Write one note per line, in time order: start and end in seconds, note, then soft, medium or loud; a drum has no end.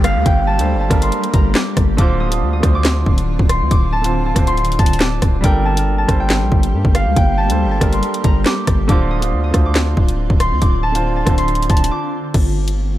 0.00 0.17 G1 loud
0.00 0.57 G3 loud
0.00 1.95 G3 medium
0.00 1.95 A#3 medium
0.00 0.58 D4 medium
0.00 1.95 G4 loud
0.00 0.60 A4 medium
0.00 0.93 A#4 loud
0.00 0.61 C5 medium
0.00 0.25 G5 medium
0.00 0.47 A5 medium
0.00 downlifter medium
0.04 1.71 F5 medium
0.04 cross-stick loud
0.04 closed hi-hat medium
0.16 0.25 D2 loud
0.26 0.60 G1 loud
0.26 1.81 G5 loud
0.26 kick loud
0.26 closed hi-hat medium
0.47 0.80 A5 medium
0.57 0.76 D2 loud
0.57 0.80 G3 medium
0.57 0.80 D4 medium
0.57 0.81 A4 medium
0.57 closed hi-hat loud
0.61 0.82 C5 medium
0.75 0.90 G1 loud
0.80 1.40 A5 medium
0.88 1.11 G1 loud
0.88 1.48 G3 medium
0.88 1.49 D4 medium
0.88 1.49 A4 medium
0.88 kick medium
0.88 cross-stick loud
0.88 closed hi-hat medium
0.93 1.50 A#4 medium
1.02 2.33 C6 medium
1.02 closed hi-hat medium
1.12 closed hi-hat medium
1.24 closed hi-hat medium
1.34 1.54 G1 loud
1.34 2.74 A#5 medium
1.34 kick loud
1.34 closed hi-hat medium
1.55 1.98 D6 medium
1.55 snare loud
1.55 clap loud
1.77 1.98 G1 loud
1.77 kick medium
1.77 cross-stick loud
1.77 closed hi-hat medium
1.97 2.43 D1 loud
1.97 2.20 D3 loud
1.97 5.40 D3 medium
1.97 5.40 C4 medium
1.97 2.20 D4 loud
1.97 5.40 F4 loud
1.97 2.21 F4 medium
1.97 2.26 D6 medium
1.97 kick loud
1.97 closed hi-hat medium
2.01 2.22 C5 loud
2.20 2.53 D#6 medium
2.29 2.52 D3 medium
2.29 2.53 D4 medium
2.29 2.54 F4 medium
2.29 closed hi-hat loud
2.34 2.54 C5 medium
2.42 2.62 D2 loud
2.53 2.81 D#6 medium
2.60 3.05 D2 loud
2.60 3.20 D3 medium
2.60 3.21 D4 medium
2.60 3.22 F4 medium
2.60 kick medium
2.60 cross-stick loud
2.60 closed hi-hat medium
2.65 3.22 C5 medium
2.75 3.71 D6 medium
2.85 snare loud
2.85 clap loud
2.85 closed hi-hat medium
3.06 3.38 D1 loud
3.06 kick loud
3.18 closed hi-hat medium
3.39 3.62 D1 loud
3.39 kick loud
3.49 4.47 C6 medium
3.49 cross-stick loud
3.49 closed hi-hat medium
3.61 3.71 D2 loud
3.71 4.33 D1 loud
3.71 4.93 D6 medium
3.71 kick loud
3.71 closed hi-hat medium
3.93 4.25 A5 loud
4.02 4.25 D3 medium
4.02 4.25 D4 medium
4.02 4.26 F4 medium
4.02 closed hi-hat medium
4.06 4.27 C5 medium
4.26 4.79 A5 medium
4.35 4.77 D1 loud
4.35 4.94 D3 medium
4.35 4.94 D4 medium
4.35 4.95 F4 medium
4.35 kick medium
4.35 cross-stick loud
4.35 closed hi-hat medium
4.39 4.96 C5 medium
4.47 5.78 C6 medium
4.47 closed hi-hat medium
4.57 closed hi-hat soft
4.65 closed hi-hat medium
4.72 closed hi-hat medium
4.79 5.20 D1 loud
4.79 5.65 A5 medium
4.79 kick loud
4.79 closed hi-hat medium
4.86 closed hi-hat medium
4.93 closed hi-hat medium
5.00 6.23 D6 medium
5.00 snare loud
5.00 clap loud
5.22 5.43 D1 loud
5.22 kick medium
5.22 cross-stick medium
5.22 closed hi-hat medium
5.41 6.06 G1 loud
5.41 5.64 G3 loud
5.41 8.86 G3 medium
5.41 8.86 A#3 medium
5.41 5.65 D4 medium
5.41 8.86 G4 loud
5.41 5.65 A4 medium
5.41 6.20 G5 loud
5.41 kick loud
5.41 closed hi-hat medium
5.45 5.66 A#4 loud
5.65 5.98 A5 medium
5.75 5.97 G3 medium
5.75 5.98 D4 medium
5.75 5.99 A4 medium
5.75 closed hi-hat loud
5.79 6.00 A#4 medium
5.98 7.37 A5 medium
6.06 6.43 G1 loud
6.06 6.66 G3 medium
6.06 6.67 D4 medium
6.06 6.67 A4 medium
6.06 kick medium
6.06 cross-stick loud
6.06 closed hi-hat medium
6.11 6.68 C5 medium
6.20 7.16 G5 medium
6.30 snare loud
6.30 clap loud
6.30 closed hi-hat medium
6.42 6.51 A#1 loud
6.52 6.75 G1 loud
6.52 kick loud
6.63 closed hi-hat medium
6.73 6.84 G2 loud
6.85 7.08 G1 loud
6.85 kick loud
6.95 8.61 F5 medium
6.95 cross-stick loud
6.95 closed hi-hat medium
7.06 7.16 D2 loud
7.16 7.51 G1 loud
7.16 8.72 G5 loud
7.16 kick loud
7.16 closed hi-hat medium
7.38 7.71 A5 medium
7.47 7.67 D2 loud
7.47 7.70 G3 medium
7.47 7.71 D4 medium
7.47 7.72 A4 medium
7.47 closed hi-hat medium
7.52 7.72 C5 medium
7.65 7.80 G1 loud
7.71 8.30 A5 medium
7.79 8.02 G1 loud
7.79 8.38 G3 medium
7.79 8.39 D4 medium
7.79 8.40 A4 medium
7.79 kick medium
7.79 cross-stick loud
7.79 closed hi-hat medium
7.83 8.41 A#4 medium
7.93 9.23 C6 medium
7.93 closed hi-hat medium
8.03 closed hi-hat medium
8.14 closed hi-hat medium
8.24 8.45 G1 loud
8.24 9.64 A#5 medium
8.24 kick loud
8.24 closed hi-hat medium
8.46 8.89 D6 medium
8.46 snare loud
8.46 clap loud
8.67 8.88 G1 loud
8.67 kick medium
8.67 cross-stick loud
8.67 closed hi-hat medium
8.88 9.34 D1 loud
8.88 9.10 D3 loud
8.88 12.31 D3 medium
8.88 12.31 C4 medium
8.88 9.11 D4 loud
8.88 12.31 F4 loud
8.88 9.12 F4 medium
8.88 9.17 D6 medium
8.88 kick loud
8.88 closed hi-hat medium
8.92 9.12 C5 loud
9.11 9.43 D#6 medium
9.20 9.43 D3 medium
9.20 9.44 D4 medium
9.20 9.44 F4 medium
9.20 closed hi-hat medium
9.24 9.45 C5 medium
9.32 9.53 D2 loud
9.44 9.72 D#6 medium
9.51 9.95 D2 loud
9.51 10.11 D3 medium
9.51 10.12 D4 medium
9.51 10.12 F4 medium
9.51 kick medium
9.51 cross-stick loud
9.51 closed hi-hat medium
9.55 10.13 C5 medium
9.66 10.61 D6 medium
9.75 snare loud
9.75 clap loud
9.75 closed hi-hat medium
9.97 10.29 D1 loud
9.97 kick loud
10.09 closed hi-hat medium
10.30 10.53 D1 loud
10.30 kick loud
10.40 11.37 C6 medium
10.40 cross-stick loud
10.40 closed hi-hat medium
10.52 10.61 D2 loud
10.62 11.24 D1 loud
10.62 11.84 D6 medium
10.62 kick loud
10.62 closed hi-hat medium
10.83 11.16 A5 loud
10.92 11.15 D3 medium
10.92 11.16 D4 medium
10.92 11.17 F4 medium
10.92 closed hi-hat medium
10.96 11.17 C5 medium
11.16 11.69 A5 medium
11.25 11.68 D1 loud
11.25 11.84 D3 medium
11.25 11.85 D4 medium
11.25 11.86 F4 medium
11.25 kick medium
11.25 cross-stick loud
11.25 closed hi-hat medium
11.29 11.86 C5 medium
11.38 12.68 C6 medium
11.38 closed hi-hat medium
11.48 closed hi-hat soft
11.55 closed hi-hat medium
11.62 closed hi-hat medium
11.70 11.90 D1 loud
11.70 12.98 A5 medium
11.70 kick loud
11.70 closed hi-hat medium
11.77 closed hi-hat medium
11.84 closed hi-hat medium
11.91 12.98 D6 medium
12.34 12.97 G1 loud
12.34 12.98 A3 medium
12.34 12.98 A#3 medium
12.34 12.98 G4 medium
12.34 kick loud
12.34 closed hi-hat medium
12.34 crash loud
12.68 closed hi-hat medium